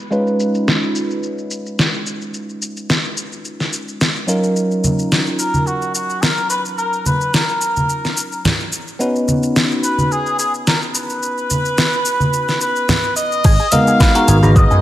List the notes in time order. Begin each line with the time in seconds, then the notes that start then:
0.11 G#3 C#4 D#4 F4 B4, shaker
0.27 shaker
0.40 shaker
0.55 shaker
0.68 snare, shaker
0.83 shaker
0.95 shaker
1.10 shaker
1.23 shaker
1.38 shaker
1.51 shaker
1.66 shaker
1.79 snare, shaker
1.94 shaker
2.06 shaker
2.21 shaker
2.34 shaker
2.49 shaker
2.62 shaker
2.77 shaker
2.90 snare, shaker
3.04 shaker
3.17 shaker
3.32 shaker
3.45 shaker
3.60 snare, shaker
3.73 shaker
3.88 shaker
4.01 snare, shaker
4.16 shaker
4.27 F#3 C#4 D#4 F4 A#4, shaker
4.43 shaker
4.56 shaker
4.71 shaker
4.84 high conga, shaker
4.99 shaker
5.12 snare, shaker
5.26 shaker
5.39 A#4, shaker
5.54 high conga, shaker
5.67 F#4, shaker
5.82 shaker
5.94 F#4, shaker
6.10 shaker
6.22 A#4, snare, shaker
6.37 shaker
6.50 B4, shaker
6.65 shaker
6.78 A#4, shaker
6.93 shaker
7.06 B4, high conga, shaker
7.21 shaker
7.34 A#4, snare, shaker
7.49 shaker
7.61 shaker
7.76 high conga, shaker
7.89 shaker
8.05 snare, shaker
8.17 shaker
8.32 shaker
8.45 snare, low conga, shaker
8.60 shaker
8.72 shaker
8.88 shaker
8.99 B3 C#4 D#4 F#4 B4, shaker
9.16 shaker
9.28 high conga, shaker
9.43 shaker
9.56 snare, shaker
9.71 shaker
9.84 B4, shaker
9.98 high conga, shaker
10.12 G#4, shaker
10.26 shaker
10.39 G#4, shaker
10.54 shaker
10.67 A#4, snare, shaker
10.82 shaker
10.95 B4, shaker
11.10 shaker
11.23 shaker
11.38 shaker
11.50 high conga, shaker
11.65 shaker
11.78 snare, shaker
11.93 shaker
12.05 shaker
12.20 high conga, shaker
12.33 shaker
12.48 snare, shaker
12.61 B4, shaker
12.76 shaker
12.89 snare, low conga, shaker
13.04 shaker
13.16 D#5, shaker
13.32 shaker
13.44 G#1 G#4, kick, crash, shaker
13.59 G#4, shaker
13.72 G#3 B3 D#4 F#4 A#4 D#5 F5, open hi-hat, high conga, shaker
13.87 G#4, shaker
14.00 B4, kick, snare, shaker
14.15 G#3 B3 D#4 F#4 A#4, open hi-hat, shaker
14.28 G#1 G#4, open hi-hat, shaker
14.42 G#3 B3 D#4 F#4 B4 A#5, high conga, shaker
14.55 D#5, kick, shaker
14.71 F#2 G#4, shaker